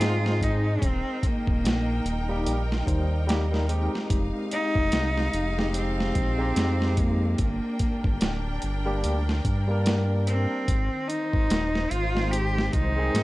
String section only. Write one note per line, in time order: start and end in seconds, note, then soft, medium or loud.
0.00 7.34 D#4 medium
0.00 0.77 C5 medium
0.00 0.78 D#5 medium
0.81 4.07 A#4 medium
0.81 4.07 G5 medium
4.09 7.35 G#3 medium
4.09 7.35 F5 medium
7.38 10.64 D4 medium
7.38 10.64 A#4 medium
7.38 10.64 G5 medium
10.67 13.23 D#3 medium
10.67 13.23 C5 medium